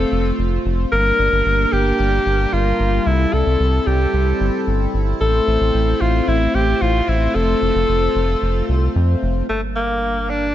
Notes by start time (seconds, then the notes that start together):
Already playing: A3 C4 F4 A4 C5
0.12 F1
0.39 F1
0.66 F1
0.92 G1 G3 A#3 D4 A#4
1.19 G1
1.32 G1
1.46 G1
1.73 G1 G4
1.99 G1
2.26 G1
2.53 G1 F4
2.80 G1
3.06 C2 C4 E4 A4
3.33 C2 A4
3.47 C2
3.60 C2
3.87 C2 G4
4.14 C2
4.41 G1
4.67 G1
4.94 G1
5.21 A1 A3 A4 C5
5.48 A1
5.61 A1
5.74 A1
6.01 A1 F4
6.28 A1 E4
6.55 A1 G4
6.82 A1 F4
7.08 A1 E4
7.35 F1 F4 A4
7.62 F1
7.75 F1
7.89 F1
8.16 F1
8.42 F1
8.69 C2
8.96 F2
9.23 F1
9.49 G1 A3
9.76 A#3
10.30 D4